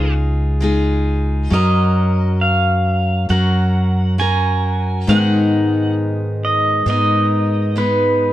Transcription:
Already playing: C#2 G#3 D#4 F4 G#4 C#5
0.60 G#3 D#4 F4 G#4
1.50 F#2 F#3 C#4 F#4 A#4 D#5
2.41 F5
3.29 F#2 F#3 C#4 F#4 A#4 F#5
4.18 F#3 C#4 F#4 A#4 G#5
5.07 G#2 D#3 G#3 B3 D#4 A#4 F#5
6.45 D#5
6.86 G#2 G#3 B3 D#4 A#4 D#5
7.76 G#3 B3 D#4 B4

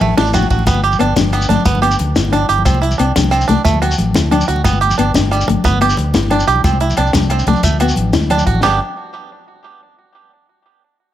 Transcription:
Already playing: B3
0.01 A1 A3, ride, low conga
0.17 A1 D4 E4, snare, ride, muted conga
0.26 shekere
0.34 D4 F#4, ride, low conga, low agogo, shekere
0.42 high conga, low conga, shekere
0.50 A1 F#4, kick, ride, shekere
0.59 low conga
0.67 G1 B3, kick, closed hi-hat, muted conga, low agogo, shekere
0.74 high conga
0.84 G4, closed hi-hat
0.92 low conga, shekere
0.99 G1 B3 D4, closed hi-hat, low agogo
1.16 G1 D4, snare, closed hi-hat, muted conga, low conga, shekere
1.24 high conga
1.33 B3, closed hi-hat, low agogo, shekere
1.41 shekere
1.49 G1 A3 D4, snare, closed hi-hat, low conga
1.65 G1 B3, kick, closed hi-hat, muted conga, shekere
1.75 high conga, low conga
1.82 B3 G4, closed hi-hat, low agogo
1.91 shekere
1.99 D2, closed hi-hat, low conga
2.16 G1 E4, snare, closed hi-hat, muted conga, shekere
2.25 high conga
2.32 D4, closed hi-hat, low conga, low agogo
2.42 low conga
2.49 G1 G4, closed hi-hat, low conga, shekere
2.58 low conga
2.65 C2 C4, kick, closed hi-hat, muted conga, low agogo, shekere
2.75 high conga
2.82 E4, closed hi-hat
2.91 low conga, shekere
2.98 C2 C4 D4, closed hi-hat, low agogo
3.16 C2 D4, snare, closed hi-hat, muted conga, low conga, shekere
3.24 high conga
3.31 C4, closed hi-hat, low agogo, shekere
3.41 shekere
3.48 C2 A3 D4, snare, closed hi-hat, low conga
3.65 D2 A3, kick, closed hi-hat, muted conga, shekere
3.74 high conga, low conga
3.82 F#4, muted nylon-string guitar stroke, closed hi-hat, low agogo
3.91 shekere
3.98 A1, closed hi-hat, low conga, shekere
4.14 D2 E4, snare, closed hi-hat, muted conga, shekere
4.31 D4, closed hi-hat, low conga, low agogo
4.41 low conga, shekere
4.48 D2 F#4, closed hi-hat, low conga
4.56 low conga
4.64 G1 B3, kick, closed hi-hat, muted conga, low agogo, shekere
4.73 high conga
4.81 G4, closed hi-hat
4.89 low conga, shekere
4.98 G1 B3 D4, closed hi-hat, low agogo
5.14 G1 D4, snare, closed hi-hat, muted conga, low conga, shekere
5.22 high conga
5.31 G3, closed hi-hat, low agogo, shekere
5.41 shekere
5.48 G1 A3, muted five-string banjo stroke, closed hi-hat, low conga
5.64 G1 B3, kick, closed hi-hat, muted conga, shekere
5.73 low conga
5.81 B3 G4, closed hi-hat, low agogo
5.90 shekere
5.97 D2, closed hi-hat, low conga, shekere
6.14 G1 E4, snare, closed hi-hat, muted conga, shekere
6.23 high conga
6.30 D4, closed hi-hat, low conga, low agogo
6.39 low conga, shekere
6.48 B1 G4, closed hi-hat, low conga, shekere
6.56 low conga
6.64 C2 C4, kick, closed hi-hat, muted conga, low agogo, shekere
6.73 high conga
6.80 E4, closed hi-hat
6.90 low conga, shekere
6.97 C2 C4 D4, closed hi-hat, low agogo
7.07 shekere
7.13 C2 D4, snare, closed hi-hat, muted conga, low conga, shekere
7.22 high conga, low conga, shekere
7.30 C4, closed hi-hat, low agogo
7.39 shekere
7.47 C2 A3 D4, snare, closed hi-hat, low conga
7.56 shekere
7.63 D2 A3, kick, closed hi-hat, muted conga, low conga, shekere
7.72 high conga, low conga
7.80 B3 F#4, closed hi-hat, low agogo, shekere
7.89 shekere
7.96 A1, closed hi-hat, low conga
8.13 D2 E4, snare, closed hi-hat, muted conga, shekere
8.21 high conga, low conga, shekere
8.30 D4, muted nylon-string guitar stroke, closed hi-hat, low conga, low agogo, shekere
8.38 shekere
8.47 A1 F#4, kick, closed hi-hat
8.55 low conga
8.63 G1 G3 B3 D4 G4, snare, crash, muted conga, low agogo, shekere

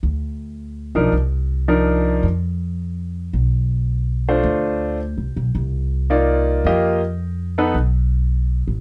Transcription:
0.03 D2
0.95 B1 F3 D4 D#4 A#4
1.12 C2
1.68 F3 D4 D#4 A#4
2.23 F2
3.33 B1
4.28 A3 D4 F4 C5
4.43 D2
5.17 C2
5.36 B1
5.55 C2
6.10 A#3 D#4 F4 D5
6.64 F2 A#3 F4 G4 D#5
7.58 B3 D#4 A4 B4
7.74 B1
8.68 A1

